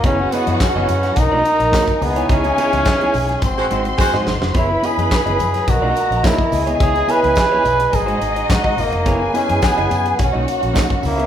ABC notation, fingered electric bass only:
X:1
M:4/4
L:1/16
Q:1/4=106
K:C#dor
V:1 name="Fingered electric bass" clef=bass
F,,,2 z F,, z F,,, F,,2 B,,, B,,, z A,,, z2 C,,2 | C,,2 z C,, z2 B,,,2 G,,,2 G,,,2 z G,, G,,, ^E,,, | F,,,2 z F,, z F,,, F,,2 B,,, B,,, z A,,, z2 C,,2 | C,,2 z C,, z2 B,,,2 G,,,2 G,,,2 G,, z G,,, ^E,,, |
F,,,2 z F,, z F,,, F,,2 B,,, B,,, z A,,, z2 C,,2 |]